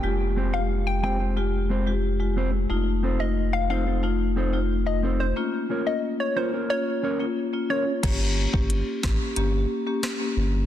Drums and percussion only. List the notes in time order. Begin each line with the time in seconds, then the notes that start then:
8.03 kick, closed hi-hat, crash
8.54 kick
8.70 closed hi-hat
9.03 kick, cross-stick, snare
9.36 closed hi-hat
10.03 cross-stick, snare, closed hi-hat